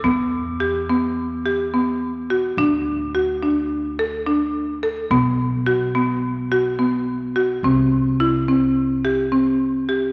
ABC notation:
X:1
M:9/8
L:1/8
Q:3/8=71
K:Em
V:1 name="Glockenspiel"
d' z8 | z8 z | z8 z | z8 z |]
V:2 name="Marimba"
B,2 G B,2 G B,2 F | D2 F D2 A D2 A | B,2 F B,2 F B,2 F | C2 E C2 G C2 G |]
V:3 name="Upright bass" clef=bass
E,,8- E,, | D,,8- D,, | B,,,8- B,,, | C,,8- C,, |]